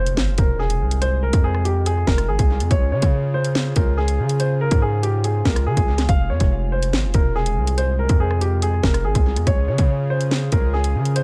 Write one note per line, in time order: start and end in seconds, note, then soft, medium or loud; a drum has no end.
0.00 0.19 F1 loud
0.00 2.67 C3 medium
0.00 2.67 G#3 medium
0.00 9.43 F4 medium
0.00 0.36 C5 medium
0.00 impact medium
0.06 closed hi-hat medium
0.17 0.29 G#1 loud
0.17 snare loud
0.28 0.38 F1 loud
0.38 0.82 E1 loud
0.38 0.58 A#4 medium
0.38 kick loud
0.38 closed hi-hat medium
0.59 0.99 G#4 medium
0.70 closed hi-hat medium
0.81 1.31 C2 loud
0.91 closed hi-hat medium
1.02 1.22 C5 loud
1.02 closed hi-hat medium
1.23 1.43 A#4 medium
1.33 2.04 F2 loud
1.33 kick loud
1.33 closed hi-hat medium
1.44 1.64 G#4 medium
1.54 cross-stick medium
1.65 1.85 G4 medium
1.65 closed hi-hat medium
1.86 2.06 G#4 medium
1.86 closed hi-hat medium
2.07 2.30 F1 loud
2.07 2.27 A#4 medium
2.07 kick loud
2.07 snare loud
2.18 cross-stick loud
2.18 closed hi-hat medium
2.28 2.38 G#1 loud
2.28 2.68 G#4 medium
2.39 2.62 C2 loud
2.39 kick medium
2.39 closed hi-hat medium
2.60 2.70 F2 loud
2.60 closed hi-hat medium
2.71 2.93 C#2 loud
2.71 6.05 C#3 medium
2.71 6.05 C#4 medium
2.71 6.05 G#4 medium
2.71 2.91 C#5 medium
2.71 kick loud
2.71 closed hi-hat medium
2.92 3.02 C#3 loud
2.92 3.32 C#5 medium
3.02 3.73 C#3 loud
3.02 kick loud
3.02 closed hi-hat medium
3.34 3.74 C5 medium
3.44 closed hi-hat medium
3.55 snare loud
3.76 4.20 C#2 loud
3.76 3.96 A#4 medium
3.76 kick loud
3.76 closed hi-hat medium
3.97 4.37 G#4 medium
4.08 closed hi-hat medium
4.19 4.69 C#3 loud
4.29 closed hi-hat medium
4.40 4.60 C5 medium
4.40 closed hi-hat medium
4.61 4.81 A#4 medium
4.71 5.42 G#2 loud
4.71 kick medium
4.71 closed hi-hat medium
4.82 5.02 G#4 medium
5.03 5.23 G4 medium
5.03 closed hi-hat medium
5.24 5.44 G#4 medium
5.24 closed hi-hat loud
5.45 5.68 C#2 loud
5.45 5.65 A#4 medium
5.45 kick loud
5.45 snare loud
5.56 cross-stick loud
5.56 closed hi-hat medium
5.67 5.77 C#3 loud
5.67 6.06 G#4 medium
5.77 6.07 C#2 loud
5.77 kick medium
5.77 closed hi-hat medium
5.98 snare medium
5.98 closed hi-hat medium
6.09 6.31 F1 loud
6.09 9.43 C3 medium
6.09 9.43 G#3 medium
6.09 6.29 F5 medium
6.09 kick loud
6.09 closed hi-hat medium
6.30 6.40 F2 loud
6.30 6.70 C#5 medium
6.40 6.95 F1 loud
6.40 kick loud
6.40 closed hi-hat medium
6.72 7.12 C5 medium
6.83 closed hi-hat medium
6.93 7.05 G#1 loud
6.93 snare loud
7.04 7.14 F1 loud
7.14 7.58 E1 loud
7.14 7.34 A#4 medium
7.14 kick loud
7.14 closed hi-hat medium
7.36 7.75 G#4 medium
7.46 closed hi-hat medium
7.57 8.07 C2 loud
7.67 closed hi-hat medium
7.78 7.98 C5 medium
7.78 closed hi-hat medium
7.99 8.19 A#4 medium
8.09 8.80 F2 loud
8.09 kick medium
8.09 closed hi-hat medium
8.20 8.40 G#4 medium
8.31 cross-stick medium
8.41 8.61 G4 medium
8.41 closed hi-hat medium
8.62 8.82 G#4 medium
8.62 closed hi-hat loud
8.83 9.06 F1 loud
8.83 9.03 A#4 medium
8.83 kick loud
8.83 snare loud
8.94 cross-stick loud
8.94 closed hi-hat medium
9.05 9.15 G#1 loud
9.05 9.44 G#4 medium
9.15 9.38 C2 loud
9.15 kick medium
9.15 closed hi-hat medium
9.36 9.46 F2 loud
9.36 closed hi-hat medium
9.47 9.69 C#2 loud
9.47 11.23 C#3 medium
9.47 11.23 C#4 medium
9.47 11.23 F4 medium
9.47 11.23 G#4 loud
9.47 9.67 C#5 medium
9.47 kick loud
9.47 closed hi-hat medium
9.68 9.78 C#3 loud
9.68 10.08 C#5 medium
9.78 10.49 C#3 loud
9.78 kick loud
9.78 closed hi-hat medium
10.10 10.50 C5 medium
10.21 closed hi-hat medium
10.31 snare loud
10.52 10.96 C#2 loud
10.52 10.72 A#4 medium
10.52 kick loud
10.52 closed hi-hat medium
10.74 11.13 G#4 medium
10.84 closed hi-hat medium
10.95 11.23 C#3 loud
11.05 closed hi-hat medium
11.16 11.23 C5 medium
11.16 closed hi-hat medium